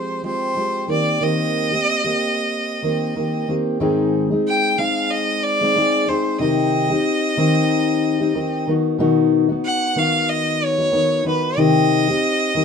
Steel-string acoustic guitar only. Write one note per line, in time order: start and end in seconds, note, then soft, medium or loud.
0.00 0.22 F3 soft
0.00 0.23 G#3 soft
0.00 0.24 C4 soft
0.00 0.24 G4 soft
0.23 0.55 F3 medium
0.23 0.55 G#3 medium
0.23 0.56 C4 medium
0.23 0.57 G4 medium
0.56 0.87 F3 medium
0.56 0.89 G#3 medium
0.56 0.88 C4 medium
0.56 0.89 G4 medium
0.88 1.19 D#3 medium
0.88 1.20 A#3 medium
0.88 1.21 C4 medium
0.88 1.21 G4 medium
1.20 1.71 D#3 medium
1.20 1.72 A#3 medium
1.20 1.72 C4 medium
1.20 1.70 G4 medium
1.71 2.05 A#3 soft
1.71 2.04 C4 soft
1.71 2.03 G4 medium
2.04 2.83 A#3 soft
2.04 2.84 C4 medium
2.04 2.84 G4 medium
2.82 3.14 D#3 medium
2.82 3.15 A#3 medium
2.82 3.17 C4 medium
2.82 3.17 G4 medium
3.15 3.47 D#3 medium
3.15 3.47 A#3 medium
3.15 3.48 C4 medium
3.15 3.49 G4 medium
3.48 3.79 D#3 medium
3.48 3.81 A#3 medium
3.48 3.80 C4 medium
3.48 3.81 G4 medium
3.80 4.31 G#2 medium
3.80 4.31 D#3 medium
3.80 4.31 G#3 medium
3.80 4.31 C4 medium
3.80 4.31 D#4 medium
3.80 4.29 G#4 medium
4.31 4.77 G#3 soft
4.31 4.78 C4 soft
4.31 4.78 D#4 medium
4.31 4.78 G#4 medium
4.78 5.61 G#3 medium
4.78 5.62 C4 medium
4.78 5.62 D#4 medium
4.78 5.60 G#4 medium
5.61 5.75 G#3 soft
5.61 5.76 C4 soft
5.61 5.76 D#4 medium
5.61 5.75 G#4 medium
5.76 6.06 G#3 medium
5.76 6.08 C4 medium
5.76 6.09 D#4 medium
5.76 6.09 G#4 medium
6.07 6.40 G#3 medium
6.07 6.39 C4 medium
6.07 6.39 D#4 medium
6.07 6.41 G#4 medium
6.39 6.90 C3 medium
6.39 6.90 D#3 medium
6.39 6.91 C4 medium
6.39 6.90 D#4 medium
6.39 6.89 G4 medium
6.90 7.37 C4 medium
6.90 7.38 D#4 medium
6.90 7.37 G4 medium
7.37 8.34 D#3 medium
7.37 8.20 C4 medium
7.37 8.21 D#4 medium
7.37 8.19 G4 medium
8.20 8.34 C4 soft
8.20 8.35 D#4 medium
8.20 8.35 G4 medium
8.34 8.66 D#3 medium
8.34 8.67 C4 medium
8.34 8.68 D#4 medium
8.34 8.68 G4 medium
8.67 8.98 D#3 medium
8.67 8.99 B3 medium
8.67 8.99 D#4 medium
8.67 8.99 F#4 medium
8.99 9.49 B2 medium
8.99 9.50 D#3 medium
8.99 9.50 B3 medium
8.99 9.49 D#4 loud
8.99 9.48 F#4 medium
9.49 9.95 B3 medium
9.49 9.96 D#4 medium
9.49 9.96 F#4 medium
9.96 10.91 D#3 medium
9.96 10.79 B3 medium
9.96 10.80 D#4 medium
9.96 10.77 F#4 medium
10.78 10.92 B3 soft
10.78 10.92 D#4 medium
10.78 10.93 F#4 medium
10.92 11.23 D#3 medium
10.92 11.24 B3 medium
10.92 11.25 D#4 medium
10.92 11.26 F#4 medium
11.24 11.57 D#3 medium
11.24 11.57 B3 medium
11.24 11.57 D#4 medium
11.24 11.58 F#4 medium
11.57 12.08 C3 medium
11.57 12.08 D#3 medium
11.57 12.08 C4 medium
11.57 12.08 D#4 medium
11.57 12.07 G4 medium
12.08 12.55 C4 soft
12.08 12.56 D#4 medium
12.08 12.55 G4 medium
12.55 12.65 D#3 medium
12.55 12.65 C4 medium
12.55 12.65 D#4 medium
12.55 12.65 G4 medium